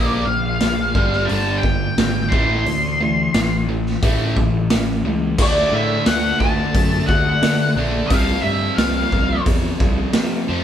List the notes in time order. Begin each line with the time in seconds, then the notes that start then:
Already playing: A#1 A#2 F3 A#3 E5
0.05 D5
0.25 A#1 A#2 F3 F5
0.60 A#1 A#2 F3, snare, open hi-hat
0.94 G1 G2 D3 G3, kick
1.12 snare
1.25 G2 D3 A5
1.29 G1 G3, open hi-hat
1.58 G5
1.63 G2 D3, kick
1.98 G#1 G2 D3, snare, open hi-hat
2.29 A1 A2 C6, kick
2.33 E3 A3
2.66 D2 A2 E3, open hi-hat
3.01 A2 E3
3.34 A1 A2 E3, snare, open hi-hat
3.69 A2 E3
3.86 snare
4.03 A1 A2 E3 A3, kick, open hi-hat
4.36 A1 A2 E3, kick
4.70 A1 A2 E3, snare, open hi-hat
5.04 C#2 A2 E3
5.38 D2 D3 A3 D4 D5, kick, crash
5.72 A2 E5
6.06 D2 F#5, snare, open hi-hat
6.40 D2 A5, kick
6.74 F#2, kick, open hi-hat
7.07 D2 F#5, kick, snare
7.42 D3, snare, open hi-hat
7.76 A#1 D3 A3 D4
8.07 C2 F2 F5, kick, open hi-hat
8.12 C3 F3
8.42 G2 E5
8.76 C2 F5, snare, open hi-hat
9.12 C2, kick
9.46 E2, kick, open hi-hat
9.80 C2, kick, snare
10.13 C3, snare, open hi-hat
10.48 F2 C3 F3